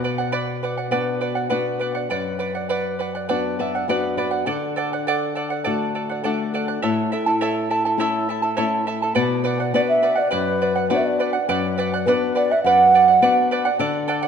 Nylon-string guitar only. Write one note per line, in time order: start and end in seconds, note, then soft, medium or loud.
0.00 2.07 B2 medium
0.91 1.49 B3 soft
0.91 1.50 D4 soft
0.91 1.50 F#4 soft
1.51 2.09 B3 soft
1.51 2.09 D4 soft
1.51 2.09 F#4 soft
2.11 4.43 F#2 medium
3.30 3.87 B3 soft
3.30 3.87 D4 soft
3.30 3.59 F#4 soft
3.60 3.87 E5 medium
3.88 4.45 B3 soft
3.88 4.46 D4 soft
3.88 4.46 F#4 soft
3.88 4.16 D5 medium
4.17 4.45 B4 medium
4.47 6.78 D3 medium
5.66 6.23 A3 soft
5.66 6.23 D4 soft
5.66 6.23 F#4 soft
6.25 6.81 A3 soft
6.25 6.82 D4 soft
6.25 6.82 F#4 soft
6.83 9.13 A2 medium
7.98 8.55 A3 soft
7.98 8.55 C#4 soft
7.98 8.55 E4 soft
8.58 9.14 A3 soft
8.58 9.15 C#4 soft
8.58 9.15 E4 soft
9.16 9.72 B2 medium
9.74 10.21 B3 soft
9.74 10.21 D4 soft
9.74 10.21 F#4 medium
10.33 10.89 F#2 medium
10.90 11.37 B3 soft
10.90 11.37 D4 soft
10.90 11.37 F#4 medium
11.49 12.05 F#2 medium
12.06 12.53 B3 soft
12.06 12.53 D4 soft
12.06 12.53 F#4 medium
12.64 13.21 F#2 medium
13.22 13.68 B3 soft
13.22 13.68 D4 soft
13.22 13.69 F#4 medium
13.79 14.28 D3 medium